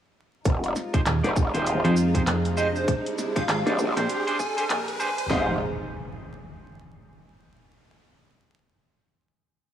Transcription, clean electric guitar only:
0.94 1.00 D#4 medium
0.94 1.00 G4 medium
0.94 1.00 G#4 medium
0.94 1.00 C5 medium
1.24 1.30 D#4 medium
1.24 1.30 G4 medium
1.24 1.30 G#4 medium
1.24 1.30 D5 medium
1.54 1.80 D#4 medium
1.54 1.80 G4 medium
1.54 1.80 G#4 medium
1.54 1.80 C5 medium
1.84 1.95 D#4 medium
1.84 1.95 G4 medium
1.84 1.95 G#4 medium
1.84 1.95 C5 loud
2.15 2.21 D#4 medium
2.15 2.21 G4 medium
2.15 2.21 G#4 medium
2.15 2.21 C5 medium
2.57 2.67 D#4 medium
2.57 2.67 G4 medium
2.57 2.67 G#4 medium
2.57 2.67 C5 loud
3.36 3.42 D4 medium
3.36 3.43 G4 medium
3.36 3.42 G#4 medium
3.36 3.43 C5 medium
3.66 3.73 D4 medium
3.66 3.73 G4 medium
3.66 3.73 G#4 medium
3.66 3.73 D5 medium
3.97 4.23 D4 medium
3.97 4.23 G4 medium
3.97 4.23 G#4 medium
3.97 4.23 C5 medium
4.27 4.37 D4 medium
4.27 4.37 G4 medium
4.27 4.37 G#4 medium
4.27 4.37 C5 loud
4.57 4.64 D4 medium
4.57 4.64 G4 medium
4.57 4.64 G#4 medium
4.57 4.64 C5 medium
5.00 5.09 D4 medium
5.00 5.09 G4 medium
5.00 5.09 G#4 medium
5.00 5.09 C5 loud
5.30 5.54 D#4 medium
5.30 5.54 G4 medium
5.30 5.54 G#4 medium
5.30 5.54 C5 medium

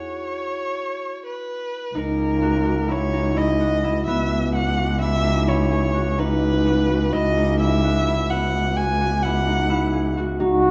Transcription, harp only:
0.00 1.72 E4 medium
0.00 2.02 F#4 medium
0.00 1.62 G#4 medium
1.95 2.94 D#4 medium
2.42 2.65 F#4 medium
2.65 3.60 F#4 medium
2.88 3.19 E4 medium
3.13 3.42 D#4 medium
3.36 3.84 E4 medium
3.60 4.54 F#4 medium
3.84 5.00 E4 medium
4.07 7.18 B3 medium
4.54 4.77 F#4 medium
4.77 5.94 F#4 medium
5.01 5.29 E4 medium
5.23 5.52 D#4 medium
5.46 6.24 E4 medium
5.71 7.98 G#4 medium
5.94 6.66 F#4 medium
6.18 7.20 D#4 medium
6.66 6.89 F#4 medium
6.89 7.84 F#4 medium
7.14 7.43 E4 medium
7.37 7.66 D#4 medium
7.60 8.07 E4 medium
7.84 8.77 F#4 medium
8.07 9.24 E4 medium
8.31 10.71 B3 medium
8.77 9.00 F#4 medium
9.01 10.17 F#4 medium
9.24 9.53 E4 medium
9.47 9.76 D#4 medium
9.70 10.46 E4 medium
9.93 10.71 G#4 medium
10.17 10.71 F#4 medium
10.40 10.71 D#4 medium

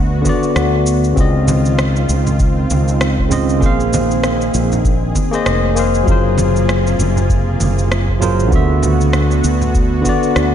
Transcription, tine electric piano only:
0.00 0.21 D3 medium
0.00 0.22 B3 medium
0.00 0.23 F#4 medium
0.00 0.24 E5 medium
0.22 1.12 D3 medium
0.22 1.14 B3 medium
0.27 1.15 F#4 medium
0.27 1.16 D5 medium
1.13 3.27 C#3 medium
1.13 3.28 C4 medium
1.18 3.29 F4 medium
1.18 3.30 D#5 medium
3.29 3.58 C#3 medium
3.29 3.59 C4 medium
3.29 3.59 F4 medium
3.29 3.60 D#5 medium
3.59 5.10 A#3 medium
3.59 5.12 G#4 medium
3.63 5.13 C5 medium
3.63 5.14 F5 loud
5.31 5.73 A#3 medium
5.31 5.73 G#4 medium
5.31 5.74 C5 medium
5.31 5.75 D#5 medium
5.75 6.03 A#3 medium
5.75 6.04 G#4 medium
5.75 6.05 C5 medium
5.79 6.06 F5 medium
6.04 8.17 F#3 medium
6.04 8.18 F4 medium
6.04 8.19 G#4 medium
6.09 8.20 A#4 medium
6.09 8.21 C5 medium
8.19 8.48 F#3 medium
8.19 8.49 F4 medium
8.19 8.49 G#4 medium
8.19 8.50 A#4 medium
8.19 8.50 C5 medium
8.48 10.00 D3 medium
8.48 10.01 B3 medium
8.53 10.03 F#4 medium
8.53 10.04 E5 medium
10.02 10.55 D3 medium
10.02 10.55 B3 medium
10.06 10.55 F#4 medium
10.06 10.55 D5 medium

